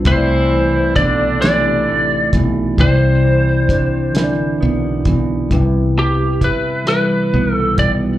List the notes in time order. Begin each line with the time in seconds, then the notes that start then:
Already playing: F3 C4 D4
0.04 C2 C3 E3 A3 E4 C5, kick, closed hi-hat
0.08 E4 C5
0.16 D5
0.52 E3
0.96 B1 D3 D4 D5, kick, closed hi-hat
1.40 E3 A3 C4 D#4 D5, snare, closed hi-hat
1.46 G4
1.50 E4
1.89 A1 A3
2.33 B1 E3, kick, closed hi-hat
2.77 C2 C3 C4 E4, kick, closed hi-hat
2.81 C5 D5
3.25 E3
3.69 D4, kick, closed hi-hat
4.12 D3 E3 D4 E4, closed hi-hat
4.17 A#4, snare
4.24 D5
4.60 B1 B3
5.05 B1 E3, kick, closed hi-hat
5.49 C2 C3 G3 E4, kick, closed hi-hat
5.53 B4
5.98 G3 G4
6.41 E4 B4, muted fretless electric bass stroke, kick, closed hi-hat
6.84 E3 G3 B4, closed hi-hat
6.88 E4 B4, cross-stick
7.34 B1 B3
7.54 A4
7.78 B1 G3 D5, kick, closed hi-hat